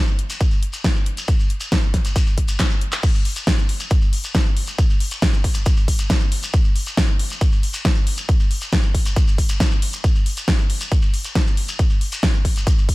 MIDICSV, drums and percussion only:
0, 0, Header, 1, 3, 480
1, 0, Start_track
1, 0, Tempo, 437956
1, 1405, Time_signature, 4, 2, 24, 8
1, 14192, End_track
2, 0, Start_track
2, 0, Title_t, "Shekere"
2, 81, Note_on_c, 9, 82, 34
2, 191, Note_off_c, 9, 82, 0
2, 328, Note_on_c, 9, 82, 74
2, 437, Note_off_c, 9, 82, 0
2, 445, Note_on_c, 9, 82, 58
2, 555, Note_off_c, 9, 82, 0
2, 561, Note_on_c, 9, 82, 35
2, 671, Note_off_c, 9, 82, 0
2, 799, Note_on_c, 9, 82, 66
2, 908, Note_off_c, 9, 82, 0
2, 927, Note_on_c, 9, 82, 61
2, 1037, Note_off_c, 9, 82, 0
2, 1052, Note_on_c, 9, 82, 32
2, 1162, Note_off_c, 9, 82, 0
2, 1293, Note_on_c, 9, 82, 74
2, 1399, Note_off_c, 9, 82, 0
2, 1399, Note_on_c, 9, 82, 53
2, 1508, Note_off_c, 9, 82, 0
2, 1529, Note_on_c, 9, 82, 36
2, 1639, Note_off_c, 9, 82, 0
2, 1757, Note_on_c, 9, 82, 71
2, 1866, Note_off_c, 9, 82, 0
2, 1883, Note_on_c, 9, 82, 54
2, 1993, Note_off_c, 9, 82, 0
2, 2001, Note_on_c, 9, 82, 33
2, 2111, Note_off_c, 9, 82, 0
2, 2248, Note_on_c, 9, 82, 69
2, 2358, Note_off_c, 9, 82, 0
2, 2368, Note_on_c, 9, 82, 61
2, 2478, Note_off_c, 9, 82, 0
2, 2484, Note_on_c, 9, 82, 37
2, 2594, Note_off_c, 9, 82, 0
2, 2718, Note_on_c, 9, 82, 69
2, 2828, Note_off_c, 9, 82, 0
2, 2847, Note_on_c, 9, 82, 56
2, 2957, Note_off_c, 9, 82, 0
2, 2964, Note_on_c, 9, 82, 36
2, 3073, Note_off_c, 9, 82, 0
2, 3199, Note_on_c, 9, 82, 65
2, 3309, Note_off_c, 9, 82, 0
2, 3320, Note_on_c, 9, 82, 59
2, 3429, Note_off_c, 9, 82, 0
2, 3446, Note_on_c, 9, 82, 39
2, 3556, Note_off_c, 9, 82, 0
2, 3681, Note_on_c, 9, 82, 73
2, 3791, Note_off_c, 9, 82, 0
2, 3809, Note_on_c, 9, 82, 62
2, 3919, Note_off_c, 9, 82, 0
2, 3924, Note_on_c, 9, 82, 37
2, 4034, Note_off_c, 9, 82, 0
2, 4165, Note_on_c, 9, 82, 78
2, 4274, Note_off_c, 9, 82, 0
2, 4276, Note_on_c, 9, 82, 57
2, 4385, Note_off_c, 9, 82, 0
2, 4402, Note_on_c, 9, 82, 37
2, 4511, Note_off_c, 9, 82, 0
2, 4649, Note_on_c, 9, 82, 70
2, 4759, Note_off_c, 9, 82, 0
2, 4764, Note_on_c, 9, 82, 57
2, 4874, Note_off_c, 9, 82, 0
2, 4882, Note_on_c, 9, 82, 37
2, 4992, Note_off_c, 9, 82, 0
2, 5122, Note_on_c, 9, 82, 67
2, 5232, Note_off_c, 9, 82, 0
2, 5247, Note_on_c, 9, 82, 67
2, 5356, Note_off_c, 9, 82, 0
2, 5368, Note_on_c, 9, 82, 36
2, 5477, Note_off_c, 9, 82, 0
2, 5604, Note_on_c, 9, 82, 74
2, 5714, Note_off_c, 9, 82, 0
2, 5721, Note_on_c, 9, 82, 61
2, 5830, Note_off_c, 9, 82, 0
2, 5843, Note_on_c, 9, 82, 40
2, 5953, Note_off_c, 9, 82, 0
2, 6074, Note_on_c, 9, 82, 85
2, 6183, Note_off_c, 9, 82, 0
2, 6200, Note_on_c, 9, 82, 60
2, 6309, Note_off_c, 9, 82, 0
2, 6324, Note_on_c, 9, 82, 39
2, 6433, Note_off_c, 9, 82, 0
2, 6562, Note_on_c, 9, 82, 72
2, 6672, Note_off_c, 9, 82, 0
2, 6684, Note_on_c, 9, 82, 60
2, 6793, Note_off_c, 9, 82, 0
2, 6795, Note_on_c, 9, 82, 37
2, 6905, Note_off_c, 9, 82, 0
2, 7049, Note_on_c, 9, 82, 79
2, 7158, Note_off_c, 9, 82, 0
2, 7161, Note_on_c, 9, 82, 69
2, 7271, Note_off_c, 9, 82, 0
2, 7282, Note_on_c, 9, 82, 38
2, 7391, Note_off_c, 9, 82, 0
2, 7524, Note_on_c, 9, 82, 74
2, 7634, Note_off_c, 9, 82, 0
2, 7648, Note_on_c, 9, 82, 59
2, 7756, Note_off_c, 9, 82, 0
2, 7756, Note_on_c, 9, 82, 41
2, 7866, Note_off_c, 9, 82, 0
2, 8012, Note_on_c, 9, 82, 78
2, 8122, Note_off_c, 9, 82, 0
2, 8124, Note_on_c, 9, 82, 63
2, 8234, Note_off_c, 9, 82, 0
2, 8244, Note_on_c, 9, 82, 41
2, 8354, Note_off_c, 9, 82, 0
2, 8478, Note_on_c, 9, 82, 78
2, 8588, Note_off_c, 9, 82, 0
2, 8606, Note_on_c, 9, 82, 56
2, 8716, Note_off_c, 9, 82, 0
2, 8717, Note_on_c, 9, 82, 41
2, 8826, Note_off_c, 9, 82, 0
2, 8959, Note_on_c, 9, 82, 75
2, 9069, Note_off_c, 9, 82, 0
2, 9080, Note_on_c, 9, 82, 56
2, 9189, Note_off_c, 9, 82, 0
2, 9203, Note_on_c, 9, 82, 38
2, 9313, Note_off_c, 9, 82, 0
2, 9439, Note_on_c, 9, 82, 79
2, 9549, Note_off_c, 9, 82, 0
2, 9560, Note_on_c, 9, 82, 61
2, 9669, Note_off_c, 9, 82, 0
2, 9675, Note_on_c, 9, 82, 38
2, 9785, Note_off_c, 9, 82, 0
2, 9927, Note_on_c, 9, 82, 80
2, 10037, Note_off_c, 9, 82, 0
2, 10046, Note_on_c, 9, 82, 60
2, 10155, Note_off_c, 9, 82, 0
2, 10167, Note_on_c, 9, 82, 38
2, 10277, Note_off_c, 9, 82, 0
2, 10402, Note_on_c, 9, 82, 83
2, 10511, Note_off_c, 9, 82, 0
2, 10529, Note_on_c, 9, 82, 66
2, 10639, Note_off_c, 9, 82, 0
2, 10647, Note_on_c, 9, 82, 37
2, 10757, Note_off_c, 9, 82, 0
2, 10886, Note_on_c, 9, 82, 79
2, 10996, Note_off_c, 9, 82, 0
2, 11006, Note_on_c, 9, 82, 56
2, 11116, Note_off_c, 9, 82, 0
2, 11127, Note_on_c, 9, 82, 34
2, 11237, Note_off_c, 9, 82, 0
2, 11366, Note_on_c, 9, 82, 78
2, 11476, Note_off_c, 9, 82, 0
2, 11486, Note_on_c, 9, 82, 65
2, 11596, Note_off_c, 9, 82, 0
2, 11600, Note_on_c, 9, 82, 39
2, 11710, Note_off_c, 9, 82, 0
2, 11843, Note_on_c, 9, 82, 77
2, 11953, Note_off_c, 9, 82, 0
2, 11968, Note_on_c, 9, 82, 60
2, 12077, Note_off_c, 9, 82, 0
2, 12077, Note_on_c, 9, 82, 38
2, 12187, Note_off_c, 9, 82, 0
2, 12328, Note_on_c, 9, 82, 74
2, 12437, Note_off_c, 9, 82, 0
2, 12451, Note_on_c, 9, 82, 59
2, 12561, Note_off_c, 9, 82, 0
2, 12566, Note_on_c, 9, 82, 40
2, 12676, Note_off_c, 9, 82, 0
2, 12807, Note_on_c, 9, 82, 79
2, 12917, Note_off_c, 9, 82, 0
2, 12923, Note_on_c, 9, 82, 62
2, 13033, Note_off_c, 9, 82, 0
2, 13040, Note_on_c, 9, 82, 34
2, 13149, Note_off_c, 9, 82, 0
2, 13286, Note_on_c, 9, 82, 80
2, 13396, Note_off_c, 9, 82, 0
2, 13396, Note_on_c, 9, 82, 57
2, 13506, Note_off_c, 9, 82, 0
2, 13522, Note_on_c, 9, 82, 35
2, 13632, Note_off_c, 9, 82, 0
2, 13776, Note_on_c, 9, 82, 75
2, 13885, Note_off_c, 9, 82, 0
2, 13890, Note_on_c, 9, 82, 61
2, 14000, Note_off_c, 9, 82, 0
2, 14012, Note_on_c, 9, 82, 34
2, 14121, Note_off_c, 9, 82, 0
2, 14192, End_track
3, 0, Start_track
3, 0, Title_t, "Drums"
3, 206, Note_on_c, 9, 42, 84
3, 315, Note_off_c, 9, 42, 0
3, 326, Note_on_c, 9, 42, 59
3, 435, Note_off_c, 9, 42, 0
3, 445, Note_on_c, 9, 36, 100
3, 446, Note_on_c, 9, 42, 61
3, 555, Note_off_c, 9, 36, 0
3, 556, Note_off_c, 9, 42, 0
3, 686, Note_on_c, 9, 42, 82
3, 795, Note_off_c, 9, 42, 0
3, 806, Note_on_c, 9, 42, 67
3, 916, Note_off_c, 9, 42, 0
3, 925, Note_on_c, 9, 36, 104
3, 925, Note_on_c, 9, 38, 103
3, 925, Note_on_c, 9, 42, 59
3, 1035, Note_off_c, 9, 36, 0
3, 1035, Note_off_c, 9, 38, 0
3, 1035, Note_off_c, 9, 42, 0
3, 1165, Note_on_c, 9, 42, 83
3, 1275, Note_off_c, 9, 42, 0
3, 1285, Note_on_c, 9, 42, 67
3, 1395, Note_off_c, 9, 42, 0
3, 1405, Note_on_c, 9, 36, 102
3, 1405, Note_on_c, 9, 42, 61
3, 1515, Note_off_c, 9, 36, 0
3, 1515, Note_off_c, 9, 42, 0
3, 1644, Note_on_c, 9, 42, 86
3, 1754, Note_off_c, 9, 42, 0
3, 1765, Note_on_c, 9, 42, 65
3, 1874, Note_off_c, 9, 42, 0
3, 1884, Note_on_c, 9, 36, 109
3, 1885, Note_on_c, 9, 38, 114
3, 1885, Note_on_c, 9, 42, 62
3, 1994, Note_off_c, 9, 36, 0
3, 1995, Note_off_c, 9, 38, 0
3, 1995, Note_off_c, 9, 42, 0
3, 2124, Note_on_c, 9, 36, 57
3, 2125, Note_on_c, 9, 38, 34
3, 2125, Note_on_c, 9, 42, 88
3, 2234, Note_off_c, 9, 36, 0
3, 2235, Note_off_c, 9, 38, 0
3, 2235, Note_off_c, 9, 42, 0
3, 2244, Note_on_c, 9, 42, 65
3, 2354, Note_off_c, 9, 42, 0
3, 2365, Note_on_c, 9, 36, 99
3, 2365, Note_on_c, 9, 42, 64
3, 2474, Note_off_c, 9, 36, 0
3, 2474, Note_off_c, 9, 42, 0
3, 2604, Note_on_c, 9, 42, 89
3, 2605, Note_on_c, 9, 36, 55
3, 2714, Note_off_c, 9, 36, 0
3, 2714, Note_off_c, 9, 42, 0
3, 2723, Note_on_c, 9, 42, 64
3, 2833, Note_off_c, 9, 42, 0
3, 2845, Note_on_c, 9, 36, 108
3, 2845, Note_on_c, 9, 38, 111
3, 2845, Note_on_c, 9, 39, 100
3, 2845, Note_on_c, 9, 42, 61
3, 2954, Note_off_c, 9, 36, 0
3, 2954, Note_off_c, 9, 38, 0
3, 2954, Note_off_c, 9, 39, 0
3, 2954, Note_off_c, 9, 42, 0
3, 3084, Note_on_c, 9, 42, 86
3, 3194, Note_off_c, 9, 42, 0
3, 3204, Note_on_c, 9, 39, 77
3, 3204, Note_on_c, 9, 42, 66
3, 3314, Note_off_c, 9, 39, 0
3, 3314, Note_off_c, 9, 42, 0
3, 3324, Note_on_c, 9, 36, 115
3, 3325, Note_on_c, 9, 42, 60
3, 3325, Note_on_c, 9, 49, 67
3, 3434, Note_off_c, 9, 36, 0
3, 3434, Note_off_c, 9, 42, 0
3, 3434, Note_off_c, 9, 49, 0
3, 3564, Note_on_c, 9, 46, 98
3, 3674, Note_off_c, 9, 46, 0
3, 3685, Note_on_c, 9, 42, 65
3, 3794, Note_off_c, 9, 42, 0
3, 3804, Note_on_c, 9, 36, 104
3, 3805, Note_on_c, 9, 38, 115
3, 3805, Note_on_c, 9, 42, 66
3, 3913, Note_off_c, 9, 36, 0
3, 3914, Note_off_c, 9, 38, 0
3, 3914, Note_off_c, 9, 42, 0
3, 4044, Note_on_c, 9, 46, 95
3, 4154, Note_off_c, 9, 46, 0
3, 4165, Note_on_c, 9, 42, 65
3, 4274, Note_off_c, 9, 42, 0
3, 4284, Note_on_c, 9, 36, 114
3, 4284, Note_on_c, 9, 42, 66
3, 4393, Note_off_c, 9, 36, 0
3, 4394, Note_off_c, 9, 42, 0
3, 4524, Note_on_c, 9, 46, 100
3, 4634, Note_off_c, 9, 46, 0
3, 4644, Note_on_c, 9, 42, 65
3, 4754, Note_off_c, 9, 42, 0
3, 4764, Note_on_c, 9, 36, 112
3, 4765, Note_on_c, 9, 38, 111
3, 4765, Note_on_c, 9, 42, 59
3, 4873, Note_off_c, 9, 36, 0
3, 4874, Note_off_c, 9, 38, 0
3, 4874, Note_off_c, 9, 42, 0
3, 5004, Note_on_c, 9, 46, 96
3, 5114, Note_off_c, 9, 46, 0
3, 5124, Note_on_c, 9, 42, 66
3, 5234, Note_off_c, 9, 42, 0
3, 5244, Note_on_c, 9, 36, 119
3, 5244, Note_on_c, 9, 42, 61
3, 5354, Note_off_c, 9, 36, 0
3, 5354, Note_off_c, 9, 42, 0
3, 5484, Note_on_c, 9, 46, 104
3, 5594, Note_off_c, 9, 46, 0
3, 5604, Note_on_c, 9, 42, 67
3, 5714, Note_off_c, 9, 42, 0
3, 5724, Note_on_c, 9, 36, 116
3, 5725, Note_on_c, 9, 38, 116
3, 5725, Note_on_c, 9, 42, 62
3, 5834, Note_off_c, 9, 36, 0
3, 5835, Note_off_c, 9, 38, 0
3, 5835, Note_off_c, 9, 42, 0
3, 5964, Note_on_c, 9, 36, 64
3, 5965, Note_on_c, 9, 46, 97
3, 6074, Note_off_c, 9, 36, 0
3, 6074, Note_off_c, 9, 46, 0
3, 6084, Note_on_c, 9, 42, 61
3, 6194, Note_off_c, 9, 42, 0
3, 6204, Note_on_c, 9, 36, 113
3, 6205, Note_on_c, 9, 42, 63
3, 6314, Note_off_c, 9, 36, 0
3, 6315, Note_off_c, 9, 42, 0
3, 6444, Note_on_c, 9, 36, 58
3, 6445, Note_on_c, 9, 46, 100
3, 6554, Note_off_c, 9, 36, 0
3, 6555, Note_off_c, 9, 46, 0
3, 6565, Note_on_c, 9, 42, 64
3, 6675, Note_off_c, 9, 42, 0
3, 6684, Note_on_c, 9, 36, 113
3, 6685, Note_on_c, 9, 38, 119
3, 6685, Note_on_c, 9, 42, 63
3, 6794, Note_off_c, 9, 36, 0
3, 6795, Note_off_c, 9, 38, 0
3, 6795, Note_off_c, 9, 42, 0
3, 6925, Note_on_c, 9, 46, 98
3, 7034, Note_off_c, 9, 46, 0
3, 7044, Note_on_c, 9, 42, 66
3, 7154, Note_off_c, 9, 42, 0
3, 7164, Note_on_c, 9, 36, 122
3, 7164, Note_on_c, 9, 42, 56
3, 7274, Note_off_c, 9, 36, 0
3, 7274, Note_off_c, 9, 42, 0
3, 7404, Note_on_c, 9, 46, 97
3, 7514, Note_off_c, 9, 46, 0
3, 7524, Note_on_c, 9, 42, 63
3, 7634, Note_off_c, 9, 42, 0
3, 7644, Note_on_c, 9, 36, 115
3, 7645, Note_on_c, 9, 38, 120
3, 7645, Note_on_c, 9, 42, 61
3, 7753, Note_off_c, 9, 36, 0
3, 7755, Note_off_c, 9, 38, 0
3, 7755, Note_off_c, 9, 42, 0
3, 7885, Note_on_c, 9, 46, 104
3, 7995, Note_off_c, 9, 46, 0
3, 8005, Note_on_c, 9, 42, 60
3, 8114, Note_off_c, 9, 42, 0
3, 8124, Note_on_c, 9, 36, 115
3, 8124, Note_on_c, 9, 42, 60
3, 8233, Note_off_c, 9, 36, 0
3, 8234, Note_off_c, 9, 42, 0
3, 8364, Note_on_c, 9, 46, 100
3, 8474, Note_off_c, 9, 46, 0
3, 8484, Note_on_c, 9, 42, 61
3, 8594, Note_off_c, 9, 42, 0
3, 8603, Note_on_c, 9, 38, 114
3, 8603, Note_on_c, 9, 42, 59
3, 8604, Note_on_c, 9, 36, 117
3, 8713, Note_off_c, 9, 36, 0
3, 8713, Note_off_c, 9, 38, 0
3, 8713, Note_off_c, 9, 42, 0
3, 8843, Note_on_c, 9, 46, 107
3, 8952, Note_off_c, 9, 46, 0
3, 8963, Note_on_c, 9, 42, 59
3, 9073, Note_off_c, 9, 42, 0
3, 9083, Note_on_c, 9, 36, 115
3, 9083, Note_on_c, 9, 42, 56
3, 9193, Note_off_c, 9, 36, 0
3, 9193, Note_off_c, 9, 42, 0
3, 9324, Note_on_c, 9, 46, 96
3, 9433, Note_off_c, 9, 46, 0
3, 9445, Note_on_c, 9, 42, 60
3, 9554, Note_off_c, 9, 42, 0
3, 9564, Note_on_c, 9, 36, 114
3, 9564, Note_on_c, 9, 38, 112
3, 9564, Note_on_c, 9, 42, 59
3, 9673, Note_off_c, 9, 36, 0
3, 9674, Note_off_c, 9, 38, 0
3, 9674, Note_off_c, 9, 42, 0
3, 9804, Note_on_c, 9, 36, 61
3, 9805, Note_on_c, 9, 46, 99
3, 9913, Note_off_c, 9, 36, 0
3, 9914, Note_off_c, 9, 46, 0
3, 9924, Note_on_c, 9, 42, 62
3, 10034, Note_off_c, 9, 42, 0
3, 10044, Note_on_c, 9, 36, 115
3, 10045, Note_on_c, 9, 42, 58
3, 10153, Note_off_c, 9, 36, 0
3, 10155, Note_off_c, 9, 42, 0
3, 10284, Note_on_c, 9, 36, 61
3, 10285, Note_on_c, 9, 46, 93
3, 10393, Note_off_c, 9, 36, 0
3, 10394, Note_off_c, 9, 46, 0
3, 10405, Note_on_c, 9, 42, 61
3, 10514, Note_off_c, 9, 42, 0
3, 10524, Note_on_c, 9, 36, 110
3, 10525, Note_on_c, 9, 38, 108
3, 10525, Note_on_c, 9, 42, 58
3, 10634, Note_off_c, 9, 36, 0
3, 10635, Note_off_c, 9, 38, 0
3, 10635, Note_off_c, 9, 42, 0
3, 10765, Note_on_c, 9, 46, 99
3, 10875, Note_off_c, 9, 46, 0
3, 10886, Note_on_c, 9, 42, 61
3, 10995, Note_off_c, 9, 42, 0
3, 11004, Note_on_c, 9, 36, 111
3, 11006, Note_on_c, 9, 42, 55
3, 11114, Note_off_c, 9, 36, 0
3, 11116, Note_off_c, 9, 42, 0
3, 11245, Note_on_c, 9, 46, 96
3, 11355, Note_off_c, 9, 46, 0
3, 11366, Note_on_c, 9, 42, 61
3, 11475, Note_off_c, 9, 42, 0
3, 11484, Note_on_c, 9, 36, 114
3, 11485, Note_on_c, 9, 38, 108
3, 11485, Note_on_c, 9, 42, 59
3, 11594, Note_off_c, 9, 36, 0
3, 11595, Note_off_c, 9, 38, 0
3, 11595, Note_off_c, 9, 42, 0
3, 11724, Note_on_c, 9, 46, 97
3, 11834, Note_off_c, 9, 46, 0
3, 11845, Note_on_c, 9, 42, 60
3, 11955, Note_off_c, 9, 42, 0
3, 11964, Note_on_c, 9, 36, 110
3, 11965, Note_on_c, 9, 42, 59
3, 12074, Note_off_c, 9, 36, 0
3, 12075, Note_off_c, 9, 42, 0
3, 12205, Note_on_c, 9, 46, 96
3, 12315, Note_off_c, 9, 46, 0
3, 12325, Note_on_c, 9, 42, 59
3, 12434, Note_off_c, 9, 42, 0
3, 12444, Note_on_c, 9, 36, 117
3, 12445, Note_on_c, 9, 38, 107
3, 12445, Note_on_c, 9, 42, 61
3, 12554, Note_off_c, 9, 36, 0
3, 12555, Note_off_c, 9, 38, 0
3, 12555, Note_off_c, 9, 42, 0
3, 12684, Note_on_c, 9, 46, 100
3, 12794, Note_off_c, 9, 46, 0
3, 12805, Note_on_c, 9, 42, 61
3, 12915, Note_off_c, 9, 42, 0
3, 12924, Note_on_c, 9, 36, 110
3, 12924, Note_on_c, 9, 42, 60
3, 13034, Note_off_c, 9, 36, 0
3, 13034, Note_off_c, 9, 42, 0
3, 13164, Note_on_c, 9, 46, 91
3, 13274, Note_off_c, 9, 46, 0
3, 13285, Note_on_c, 9, 42, 65
3, 13395, Note_off_c, 9, 42, 0
3, 13404, Note_on_c, 9, 36, 106
3, 13406, Note_on_c, 9, 38, 108
3, 13406, Note_on_c, 9, 42, 60
3, 13514, Note_off_c, 9, 36, 0
3, 13515, Note_off_c, 9, 38, 0
3, 13515, Note_off_c, 9, 42, 0
3, 13644, Note_on_c, 9, 36, 57
3, 13645, Note_on_c, 9, 46, 90
3, 13753, Note_off_c, 9, 36, 0
3, 13754, Note_off_c, 9, 46, 0
3, 13765, Note_on_c, 9, 42, 61
3, 13874, Note_off_c, 9, 42, 0
3, 13884, Note_on_c, 9, 36, 114
3, 13886, Note_on_c, 9, 42, 64
3, 13994, Note_off_c, 9, 36, 0
3, 13995, Note_off_c, 9, 42, 0
3, 14124, Note_on_c, 9, 36, 56
3, 14124, Note_on_c, 9, 46, 92
3, 14192, Note_off_c, 9, 36, 0
3, 14192, Note_off_c, 9, 46, 0
3, 14192, End_track
0, 0, End_of_file